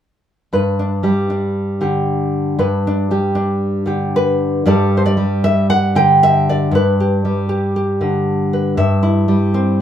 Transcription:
0.53 G2 B4
0.79 D4
1.03 G3 G4
1.30 D4
1.81 D3 G4
2.59 G2 B4
2.87 D4
3.11 G3 G4
3.35 D4
3.86 D3 G4
4.16 B4
4.66 G2 G3 G4 A4 D5
4.97 C5
5.06 D5
5.17 G3
5.44 E5
5.70 F#5
5.95 D3 G5
6.23 E5
6.49 D5
6.71 G2 B4
7.00 G4
7.25 G3
7.49 G4
7.76 G4
8.01 D3
8.53 B4
8.77 G2 E5
9.03 E4
9.28 G3
9.54 C4

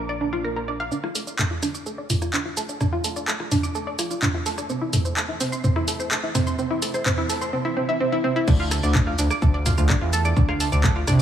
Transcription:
Already playing: A#1
0.09 D5
0.21 D4
0.33 F4
0.44 A#4
0.56 A#4
0.68 D5
0.80 F5
0.92 D4, shaker
1.04 F4, cross-stick
1.15 A4, open hi-hat, shaker
1.27 D5, shaker
1.39 A4, clap, mid tom, shaker
1.51 F4
1.63 D4, cross-stick, open hi-hat, shaker
1.75 D6, shaker
1.86 A4, shaker
1.98 D5
2.10 F4, mid tom, open hi-hat, shaker
2.22 F4, cross-stick, shaker
2.33 D4, clap, shaker
2.45 F4
2.57 A4, open hi-hat, shaker
2.69 D5, shaker
2.81 D4, cross-stick, mid tom, shaker
2.93 F4
3.04 A4, open hi-hat, shaker
3.16 D5, shaker
3.28 A4, clap, shaker
3.40 F4, cross-stick
3.52 D4, mid tom, open hi-hat, shaker
3.63 D6, shaker
3.75 A4, shaker
3.87 D5
3.99 F4, cross-stick, open hi-hat, shaker
4.11 F4, shaker
4.22 D4, clap, mid tom, shaker
4.34 F4
4.46 A4, open hi-hat, shaker
4.58 D5, cross-stick, shaker
4.70 C4, shaker
4.81 E4
4.93 A4, mid tom, open hi-hat, shaker
5.05 C5, shaker
5.17 A4, cross-stick, clap, shaker
5.29 E4
5.40 C4, open hi-hat, shaker
5.52 C6, shaker
5.64 C4, mid tom, shaker
5.76 E4, cross-stick
5.88 A4, open hi-hat, shaker
6.00 C5, shaker
6.11 A4, clap, shaker
6.23 E4
6.35 C4, cross-stick, mid tom, open hi-hat, shaker
6.47 C6, shaker
6.59 C4, shaker
6.71 E4
6.82 A4, open hi-hat, shaker
6.94 C5, cross-stick, shaker
7.06 C4, clap, mid tom, shaker
7.18 E4
7.29 A4, open hi-hat, shaker
7.41 C5, shaker
7.53 C4
7.65 E4
7.77 C4
7.89 E4
8.00 C4
8.12 E4
8.24 C4
8.36 E4
8.48 D2 D4 D5, kick, cross-stick, crash, shaker
8.60 F4 F5
8.71 A4 A5, cross-stick, open hi-hat, shaker
8.83 D2 D5 D6, shaker
8.95 A4 A5, kick, clap, mid tom, shaker
9.07 F4 F5, cross-stick
9.18 D2 D4 D5, open hi-hat, shaker
9.30 D6, cross-stick, shaker
9.42 D2 A4 A5, kick, shaker
9.54 D5 D6
9.66 F4 F5, cross-stick, mid tom, open hi-hat, shaker
9.78 D2 F4 F5, shaker
9.89 D4 D5, kick, cross-stick, clap, shaker
10.01 E2 F4 F5
10.13 A4 A5, open hi-hat, shaker
10.25 D5 D6, cross-stick, shaker
10.37 D2 D4 D5, kick, mid tom, shaker
10.49 F4 F5, cross-stick
10.60 A4 A5, open hi-hat, shaker
10.72 D2 D5 D6, shaker
10.84 A4 A5, kick, cross-stick, clap, shaker
10.96 F4 F5
11.07 C2 D4 D5, cross-stick, mid tom, open hi-hat, shaker

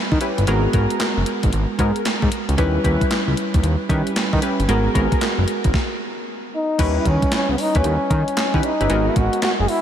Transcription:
Already playing: G3 C#4 E4 B4
0.12 D#3, kick
0.21 C#4 E4 G4 B4, closed hi-hat
0.38 G1, closed hi-hat
0.47 G#1 G#3 B3 F#4 G#4 A#4, closed hi-hat
0.73 G#1 B3 F#4 G#4 A#4, kick, closed hi-hat
0.90 closed hi-hat
1.00 snare, clap, closed hi-hat
1.17 F#1
1.26 closed hi-hat
1.43 G#1, kick, closed hi-hat
1.53 G#1, closed hi-hat
1.79 G#2 B3 F#4 G#4 A#4, kick, closed hi-hat
1.96 closed hi-hat
2.05 snare, clap, closed hi-hat
2.22 G#2, kick
2.32 closed hi-hat
2.48 C#2, closed hi-hat
2.57 D#2 G3 C#4 E4 G4 B4, kick, closed hi-hat
2.84 D#2 C#4 E4 G4 B4, kick, closed hi-hat
3.01 kick, closed hi-hat
3.11 snare, clap, closed hi-hat
3.27 C#2
3.37 closed hi-hat
3.54 D#2, kick, closed hi-hat
3.63 D#2, closed hi-hat
3.89 D#3 G3 C#4 E4 G4 B4, kick, closed hi-hat
4.07 closed hi-hat
4.16 snare, clap, closed hi-hat
4.33 D#3, kick
4.42 C#4 E4 G4 B4, closed hi-hat
4.59 G1, closed hi-hat
4.68 G#1 G#3 B3 F#4 G#4 A#4, closed hi-hat
4.95 G#1 B3 F#4 G#4 A#4, kick, closed hi-hat
5.12 kick, closed hi-hat
5.21 snare, clap, closed hi-hat
5.38 F#1
5.48 closed hi-hat
5.64 G#1, kick, closed hi-hat
5.74 kick, snare
6.55 D#4
6.78 D#2 G3 C#4 E4 G4 B4, kick, closed hi-hat, crash
6.99 E4
7.05 D#2 C#4, kick, closed hi-hat
7.22 kick, closed hi-hat
7.32 C#4, snare, clap, closed hi-hat
7.49 C#2 B3
7.58 D#4, open hi-hat
7.75 D#2 C#4 E4 G4 B4, kick, closed hi-hat
7.84 D#2, closed hi-hat
8.10 D#3, kick, closed hi-hat
8.28 closed hi-hat
8.37 snare, clap, closed hi-hat
8.54 D#3 C#4 E4 G4 B4, kick
8.63 D#4, closed hi-hat
8.80 G1 C#4 E4 G4 B4, closed hi-hat
8.89 G#1 G#3 B3 F#4 G#4 A#4, closed hi-hat
9.09 E4
9.16 G#1 F#4, kick, closed hi-hat
9.33 closed hi-hat
9.42 F#4, snare, clap, closed hi-hat
9.59 F#1 G#4
9.68 E4, open hi-hat

